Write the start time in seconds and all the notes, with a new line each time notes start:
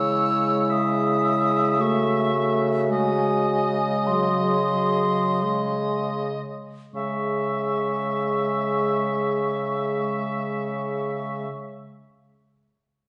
Already playing: C#3 G#3 E4 C#5 E6
0.70 E5 D#6
1.79 A3 F#4 C#6
2.35 A3
2.90 G#3 D#5 G#5
4.07 F#3 G#4 C6
4.73 F#3
5.42 G#3 G#4 D#5
6.94 C#3 G#3 G#4 E5 C#6